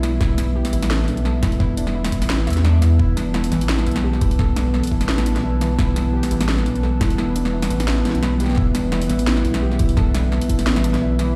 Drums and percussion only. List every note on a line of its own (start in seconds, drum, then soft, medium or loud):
0.03 snare medium
0.03 closed hi-hat medium
0.21 kick loud
0.21 snare medium
0.38 snare medium
0.38 closed hi-hat medium
0.65 snare medium
0.65 open hi-hat medium
0.73 closed hi-hat medium
0.82 snare medium
0.82 open hi-hat medium
0.91 snare loud
1.04 snare soft
1.08 open hi-hat soft
1.17 closed hi-hat soft
1.25 snare medium
1.43 kick loud
1.43 snare medium
1.43 closed hi-hat medium
1.52 open hi-hat soft
1.60 kick loud
1.60 snare medium
1.77 closed hi-hat medium
1.87 snare medium
2.04 snare medium
2.04 open hi-hat medium
2.12 kick medium
2.12 closed hi-hat medium
2.22 snare soft
2.22 open hi-hat medium
2.30 snare loud
2.47 snare medium
2.47 closed hi-hat soft
2.50 closed hi-hat soft
2.53 snare soft
2.53 closed hi-hat medium
2.65 snare medium
2.82 snare soft
2.82 closed hi-hat medium
2.99 kick loud
3.17 snare soft
3.17 closed hi-hat medium
3.34 snare medium
3.44 open hi-hat medium
3.52 snare medium
3.52 closed hi-hat medium
3.61 open hi-hat medium
3.69 snare loud
3.79 snare soft
3.87 open hi-hat soft
3.91 closed hi-hat soft
3.96 snare medium
4.13 snare soft
4.21 kick loud
4.21 closed hi-hat medium
4.31 open hi-hat soft
4.39 kick loud
4.39 snare medium
4.56 snare medium
4.56 closed hi-hat medium
4.74 snare medium
4.84 closed hi-hat medium
4.84 open hi-hat medium
4.92 kick medium
5.01 snare soft
5.01 open hi-hat medium
5.09 snare loud
5.18 snare medium
5.26 closed hi-hat medium
5.36 snare soft
5.36 closed hi-hat soft
5.61 snare medium
5.61 closed hi-hat medium
5.79 kick loud
5.79 snare medium
5.96 snare medium
5.96 closed hi-hat medium
6.23 snare medium
6.23 open hi-hat medium
6.31 closed hi-hat medium
6.41 snare medium
6.41 open hi-hat medium
6.49 snare loud
6.58 snare medium
6.66 open hi-hat soft
6.76 closed hi-hat soft
6.83 snare medium
7.01 kick loud
7.01 snare medium
7.01 closed hi-hat medium
7.10 open hi-hat soft
7.18 snare medium
7.36 closed hi-hat medium
7.45 snare medium
7.62 snare medium
7.62 open hi-hat medium
7.70 closed hi-hat medium
7.80 snare medium
7.80 open hi-hat medium
7.88 snare loud
8.05 snare medium
8.05 open hi-hat soft
8.10 snare soft
8.15 closed hi-hat soft
8.23 snare medium
8.40 snare soft
8.40 closed hi-hat medium
8.43 snare soft
8.46 snare soft
8.49 snare soft
8.52 snare soft
8.55 kick loud
8.55 snare soft
8.75 snare medium
8.75 closed hi-hat medium
8.92 snare medium
9.02 open hi-hat medium
9.10 snare medium
9.10 closed hi-hat medium
9.19 open hi-hat medium
9.27 snare loud
9.37 snare medium
9.45 open hi-hat soft
9.54 snare medium
9.54 closed hi-hat soft
9.71 snare medium
9.79 kick loud
9.79 closed hi-hat medium
9.89 open hi-hat soft
9.97 kick loud
9.97 snare medium
10.14 snare medium
10.14 closed hi-hat medium
10.32 snare medium
10.41 open hi-hat medium
10.49 kick medium
10.49 closed hi-hat medium
10.59 snare medium
10.59 open hi-hat medium
10.67 snare loud
10.76 snare medium
10.84 closed hi-hat medium
10.94 snare soft
10.94 snare medium
10.94 closed hi-hat soft
11.19 snare medium
11.19 closed hi-hat medium